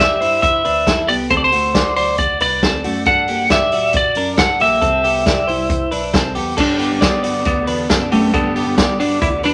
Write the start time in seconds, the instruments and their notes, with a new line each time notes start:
Already playing: tine electric piano E2
0.00 clean electric guitar G4 D5, lead electric guitar E5
0.21 tine electric piano G2, clean electric guitar E4 C5, open hi-hat
0.42 lead electric guitar E5, kick, closed hi-hat
0.65 tine electric piano D2, clean electric guitar D4 B4, open hi-hat
0.87 tine electric piano E2, clean electric guitar E4 A4, kick, snare, closed hi-hat
1.08 tine electric piano C2, clean electric guitar B3 G4, lead electric guitar D5, open hi-hat
1.30 tine electric piano D2, clean electric guitar C4 A4, lead electric guitar C5, kick, closed hi-hat
1.37 lead electric guitar D5
1.44 lead electric guitar C5
1.52 clean electric guitar A3 F#4, open hi-hat
1.74 clean electric guitar F#4 D5, kick, snare, closed hi-hat
1.96 tine electric piano D2, clean electric guitar F#4 D5, lead electric guitar C5, open hi-hat
2.18 lead electric guitar D5, kick, closed hi-hat
2.40 tine electric piano C2, clean electric guitar D4 B4, lead electric guitar D5, open hi-hat
2.63 tine electric piano D2, clean electric guitar C4 A4, kick, snare, closed hi-hat
2.84 tine electric piano F#2, clean electric guitar A3 F#4, open hi-hat
3.06 tine electric piano G2, clean electric guitar D4 A4, lead electric guitar F#5, kick, closed hi-hat, tambourine
3.28 clean electric guitar A#3 G4, open hi-hat, tambourine
3.50 clean electric guitar G4 D5, lead electric guitar E5, kick, snare, closed hi-hat, tambourine
3.72 tine electric piano A#2, clean electric guitar F#4 D5, open hi-hat, tambourine
3.93 lead electric guitar D5, kick, closed hi-hat, tambourine
4.15 tine electric piano F#2, clean electric guitar D4 A#4, open hi-hat, tambourine
4.38 clean electric guitar D4 A4, lead electric guitar F#5, kick, snare, closed hi-hat, tambourine
4.60 tine electric piano A#1, clean electric guitar A#3 G4, lead electric guitar E5, open hi-hat, tambourine
4.82 tine electric piano C2, clean electric guitar C4 A4, kick, closed hi-hat, tambourine
5.04 clean electric guitar B3 G4, open hi-hat, tambourine
5.26 clean electric guitar G4 D5, kick, snare, closed hi-hat, tambourine
5.48 tine electric piano C2, clean electric guitar E4 C5, open hi-hat, tambourine
5.70 kick, closed hi-hat, tambourine
5.91 tine electric piano B1, clean electric guitar D4 B4, open hi-hat
6.14 tine electric piano C2, clean electric guitar C4 A4, kick, snare, closed hi-hat, tambourine
6.35 tine electric piano E2, clean electric guitar B3 G4, open hi-hat, tambourine
6.57 tine electric piano G2, clean electric guitar D4 A4, lead electric guitar D4, kick, crash, tambourine
6.79 clean electric guitar B3 G4, open hi-hat, tambourine
6.91 tine electric piano G2
7.01 tine electric piano G3, lead electric guitar B3, clean electric guitar G4 D5, kick, snare, closed hi-hat, tambourine
7.23 tine electric piano G2, clean electric guitar F#4 D5, open hi-hat, tambourine
7.45 tine electric piano D2, lead electric guitar B3, kick, closed hi-hat, tambourine
7.67 tine electric piano E2, clean electric guitar D4 B4, open hi-hat, tambourine
7.90 tine electric piano F#2, clean electric guitar D4 A4, kick, snare, closed hi-hat, tambourine
8.12 tine electric piano F#2, lead electric guitar A3, clean electric guitar B3 G4, open hi-hat, tambourine
8.34 tine electric piano G2, lead electric guitar B3, clean electric guitar D4 A4, kick, closed hi-hat, tambourine
8.56 clean electric guitar B3 G4, open hi-hat, tambourine
8.67 tine electric piano G2
8.78 tine electric piano G3, clean electric guitar G4 D5, kick, snare, closed hi-hat, tambourine
9.00 tine electric piano G2, lead electric guitar D4, clean electric guitar F#4 D5, open hi-hat, tambourine
9.22 tine electric piano D2, lead electric guitar E4, kick, closed hi-hat, tambourine
9.43 tine electric piano E2, clean electric guitar D4 B4, lead electric guitar D4, open hi-hat, tambourine